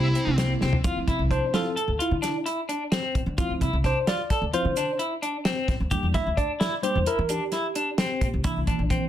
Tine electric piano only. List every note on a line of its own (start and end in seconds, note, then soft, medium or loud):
0.00 0.16 C3 medium
0.00 0.16 A#3 medium
0.00 0.16 G4 medium
0.27 0.36 C3 medium
0.27 0.36 A#3 medium
0.27 0.36 E4 medium
0.39 0.74 C3 medium
0.39 0.74 A#3 medium
0.39 0.74 E4 medium
0.84 1.53 F3 soft
0.84 1.53 C4 soft
0.84 1.53 E4 medium
1.31 1.55 C5 medium
1.54 1.75 F3 soft
1.54 1.75 C4 soft
1.54 1.75 E4 medium
1.54 1.97 A4 medium
2.01 2.44 E4 medium
3.38 3.69 F3 soft
3.38 3.69 C4 soft
3.38 3.69 E4 medium
3.86 4.06 C5 medium
4.08 4.51 D5 medium
4.54 4.74 F3 soft
4.54 4.74 C4 soft
4.54 4.75 E4 medium
4.54 4.97 C5 medium
5.91 6.22 G3 medium
5.91 6.22 A#3 soft
5.91 6.23 D4 medium
6.15 6.36 E5 loud
6.37 6.80 D5 medium
6.83 7.04 G3 soft
6.83 7.04 A#3 soft
6.83 7.04 D4 soft
6.83 7.07 C5 medium
7.07 7.31 A#4 medium
7.30 8.41 G4 medium
8.44 9.09 E3 medium
8.44 9.09 A#3 soft
8.44 9.09 D4 medium